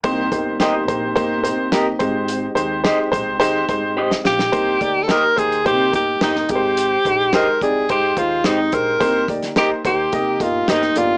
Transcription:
<<
  \new Staff \with { instrumentName = "Clean electric guitar" } { \time 4/4 \key c \minor \tempo 4 = 107 r4 <g' bes' ees''>16 r4. r16 <g' bes' ees''>16 r8. | r4 <g' c'' ees''>16 r4. r16 <g' c'' ees''>16 r8. | r4 <g' bes' ees''>16 r4. r16 <g' bes' ees''>16 r8. | r4 <g' c'' ees''>16 r4. r16 <g' c'' ees''>16 r8. |
r4 <g' bes' ees''>16 r4. r16 <g' bes' ees''>16 r8. | }
  \new Staff \with { instrumentName = "Alto saxophone" } { \time 4/4 \key c \minor r1 | r2. r8 g'8~ | g'8.~ g'32 a'32 bes'8 aes'8 g'8 g'8 ees'8 g'8~ | g'4 bes'8 aes'8 g'8 f'8 ees'8 bes'8~ |
bes'8 r8 g'8 g'4 f'8 ees'8 f'8 | }
  \new Staff \with { instrumentName = "Upright piano" } { \time 4/4 \key c \minor << { r1 | r2. c''16 ees''16 f''16 g''16~ | g''16 r2. r8. | r1 |
r1 | } \\ { <bes ees' g' c''>8 <bes ees' g' c''>8 <bes ees' g' c''>8 <bes ees' g' c''>8 <bes ees' g' c''>8 <bes ees' g' c''>8 <bes ees' g' ees''>8 <aes ees' g' c''>8~ | <aes ees' g' c''>8 <aes ees' g' c''>8 <aes ees' g' c''>8 <aes ees' g' c''>8 <aes ees' g' c''>8 <aes ees' g' c''>8 r4 | <bes ees' g' c''>8 <bes ees' g' d''>8 <bes ees' g' c''>8 <bes ees' g' c''>8 <bes ees' g' c''>8 <bes ees' g' bes'>8 <bes ees' g' c''>8 <aes ees' g' bes' c''>8~ | <aes ees' g' bes' c''>8 <aes ees' g' c''>8 <aes ees' g' c''>8 <aes ees' g' d''>8 <aes ees' g' c''>8 <aes ees' g' c''>8 <aes ees' g' c''>8 <aes ees' g' c''>8 |
<bes ees' g' c''>8 <bes ees' g' d''>8 <bes ees' g' c''>8 <bes ees' g' c''>8 <bes ees' g' ees''>8 <bes ees' g' ees''>8 <bes ees' g' c''>8 <bes ees' g' d''>8 | } >> }
  \new Staff \with { instrumentName = "Tonewheel organ" } { \time 4/4 \key c \minor << { <c' g'>1~ | <c' g'>1 | r1 | r1 |
r1 | } \\ { <bes ees'>2.~ <bes ees'>8 <aes ees'>8~ | <aes ees'>1 | r1 | r1 |
r1 | } >> }
  \new Staff \with { instrumentName = "Upright bass" } { \clef bass \time 4/4 \key c \minor c,8 g,,4 bes,,8 g,,8 c4 aes,,8~ | aes,,8 ees,8. r16 bes,,16 c,16 ees,8 aes,4 bes,,8 | c,8 d,8 r8 ees,8 c8 g,,8 g,,8 aes,,8~ | aes,,8 bes,,8 r8 c,8 aes,8 ees,8 aes,,8 bes,,8 |
c,8 d,8 r8 ees,8 c8 g,,8 g,,8 g,,8 | }
  \new DrumStaff \with { instrumentName = "Drums" } \drummode { \time 4/4 <hh bd>8 <hh bd>8 <hh sn>8 <hh bd>8 <hh bd>8 hh8 <hh sn>8 <hh bd>8 | hh8 hh8 <hh sn>8 <hh bd>8 hh8 <hh bd>8 r16 sn16 sn16 sn16 | <hh bd>8 <hh bd>8 <hh sn>8 <hh bd>16 hh16 <hh bd>8 <hh bd>8 <hh sn>16 sn16 <hh bd>8 | hh8 <hh bd>8 <hh sn>8 <hh bd>8 <hh bd>8 <hh bd>8 <hh sn>8 <hh bd>8 |
<hh bd>8 <hh bd>16 <hh sn>16 <hh sn>8 <hh bd>8 <hh bd>8 <hh bd>8 <hh sn>16 sn16 hh8 | }
>>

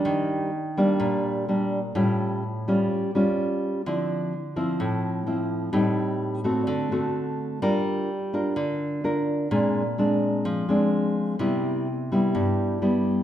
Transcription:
\new Staff \with { instrumentName = "Nylon-string guitar" } { \time 4/4 \key d \minor \tempo 4 = 127 << { <g bes d'>4 r8 <g bes d'>4. <g bes d'>8 r8 | <g cis' f'>4 r8 <g cis' f'>4 <g cis' f'>4. | <f c' e'>4 r8 <f c' e'>4. <f c' e'>4 | <g c' ees'>4. <a c' fis'>4 <a c' fis'>4. |
\key g \minor <d' f' bes'>4 r8 <d' f' bes'>4. <d' f' bes'>4 | <aes c' d'>8 r8 <aes c' d'>4. <aes c' d'>4. | <g b e'>4 r8 <g b e'>4. <g b e'>4 | } \\ { ees2 bes,2 | a,2 r2 | d2 a,2 | a,2 d2 |
g2 d2 | bes,2 f2 | c2 g,2 | } >> }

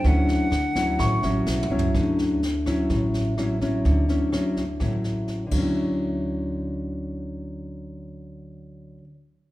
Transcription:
<<
  \new Staff \with { instrumentName = "Grand piano" } { \time 4/4 \key d \major \tempo 4 = 126 r2 cis'''2~ | cis'''8 r2. r8 | r1 | r1 |
r1 | }
  \new Staff \with { instrumentName = "Flute" } { \time 4/4 \key d \major fis''2.~ fis''8 r8 | r1 | r1 | r1 |
r1 | }
  \new Staff \with { instrumentName = "Nylon-string guitar" } { \time 4/4 \key d \major << { <fis cis' e'>4 r8 <fis cis' e'>4 <fis cis' e'>4 <fis cis' e'>8~ | <fis cis' e'>4 r8 <fis cis' e'>4. <fis cis' e'>8 <fis cis' e'>8~ | <fis cis' e'>8 <fis cis' e'>8 <fis cis' e'>8 r8 <fis cis' e'>4. <d fis cis' e'>8~ | <d fis cis' e'>1~ |
<d fis cis' e'>1 | } \\ { d2 a,2 | d2 a,2 | d2 a,4. r8 | r1 |
r1 | } >> }
  \new Staff \with { instrumentName = "Upright bass" } { \clef bass \time 4/4 \key d \major d,4 d,4 a,,8 a,,8 b,,8 cis,8 | d,2 a,,2 | d,2 a,,4. d,8~ | d,1~ |
d,1 | }
  \new DrumStaff \with { instrumentName = "Drums" } \drummode { \time 4/4 <bd sn>8 sn8 <ss sn>8 <bd sn>8 <bd ss sn>8 sn8 \tuplet 3/2 { sn8 toml8 tomfh8 } | <bd ss sn>8 sn8 sn8 <bd ss sn>8 <bd sn>8 sn8 <ss sn>8 <bd sn>8 | <bd sn>8 sn8 <ss sn>8 <bd sn>8 <bd ss sn>8 sn8 sn8 <cymc bd>8 | r4 r4 r4 r4 |
r4 r4 r4 r4 | }
>>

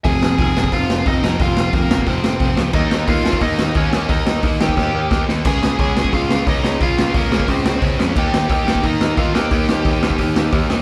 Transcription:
<<
  \new Staff \with { instrumentName = "Lead electric guitar" } { \time 4/4 \key f \minor \tempo 4 = 178 <aes' aes''>4 <aes' aes''>4 <f' f''>4 <ees' ees''>4 | <f' f''>4 <bes bes'>4 <c' c''>8 <c' c''>4 r8 | <ees' ees''>4 <f' f''>4 <ees' ees''>4 <des' des''>4 | <ees' ees''>4 r8 <g' g''>2 r8 |
<aes' aes''>4 <aes' aes''>4 <f' f''>4 <ees' ees''>4 | <f' f''>4 <bes bes'>4 <c' c''>8 <c' c''>4 r8 | <g' g''>4 <g' g''>4 <ees' ees''>4 <f' f''>8 <g' g''>8~ | <g' g''>2.~ <g' g''>8 r8 | }
  \new Staff \with { instrumentName = "Overdriven electric guitar" } { \clef bass \time 4/4 \key f \minor <f, c f>4 <f, c f>8 <f, c f>8 <f, c f>4 <f, c f>8 <f, c f>8 | <f, c f>4 <f, c f>8 <f, c f>8 <f, c f>4 <f, c f>8 <f, c f>8 | <ees bes ees'>4 <ees bes ees'>8 <ees bes ees'>8 <ees bes ees'>4 <ees bes ees'>8 <ees bes ees'>8 | <ees bes ees'>4 <ees bes ees'>8 <ees bes ees'>8 <ees bes ees'>4 <ees bes ees'>8 <ees bes ees'>8 |
<des aes des'>4 <des aes des'>8 <des aes des'>8 <des aes des'>4 <des aes des'>8 <des aes des'>8 | <des aes des'>4 <des aes des'>8 <des aes des'>8 <des aes des'>4 <des aes des'>8 <des aes des'>8 | <ees bes ees'>4 <ees bes ees'>8 <ees bes ees'>8 <ees bes ees'>4 <ees bes ees'>8 <ees bes ees'>8 | <ees bes ees'>4 <ees bes ees'>8 <ees bes ees'>8 <ees bes ees'>4 <ees bes ees'>8 <ees bes ees'>8 | }
  \new Staff \with { instrumentName = "Picked electric bass" } { \clef bass \time 4/4 \key f \minor f,,8 f,,8 f,,8 f,,8 f,,8 f,,8 f,,8 f,,8 | f,,8 f,,8 f,,8 f,,8 f,,8 f,,8 f,,8 des,8 | ees,8 ees,8 ees,8 ees,8 ees,8 ees,8 ees,8 ees,8 | ees,8 ees,8 ees,8 ees,8 ees,8 ees,8 ees,8 ees,8 |
des,8 des,8 des,8 des,8 des,8 des,8 des,8 des,8 | des,8 des,8 des,8 des,8 des,8 des,8 des,8 f,8 | ees,8 ees,8 ees,8 ees,8 ees,8 ees,8 ees,8 ees,8 | ees,8 ees,8 ees,8 ees,8 ees,8 ees,8 ees,8 ees,8 | }
  \new DrumStaff \with { instrumentName = "Drums" } \drummode { \time 4/4 <hho bd>8 sn8 <hho bd>8 sn16 bd16 <hho bd>8 sn8 <hho bd>8 sn8 | <hho bd>8 sn8 <hho bd>8 sn16 bd16 <hho bd>8 sn8 <hho bd>8 sn8 | <cymc bd>8 sn8 <hho bd>8 sn16 bd16 <hho bd>8 sn8 <hho bd>8 sn8 | <hho bd>8 sn8 <hho bd>8 sn16 bd16 <bd sn>4 <bd sn>8 sn8 |
<cymc bd>8 sn8 <hho bd>8 sn16 bd16 <hho bd>8 sn8 <hho bd>8 sn8 | <hho bd>8 sn8 <hho bd>8 sn16 bd16 <hho bd>8 sn8 <hho bd>8 sn8 | <cymc bd>8 sn8 <hho bd>8 sn16 bd16 <hho bd>8 sn8 <hho bd>8 sn8 | <hho bd>8 sn8 <hho bd>8 sn16 bd16 <hho bd>8 sn8 <hho bd>8 sn8 | }
>>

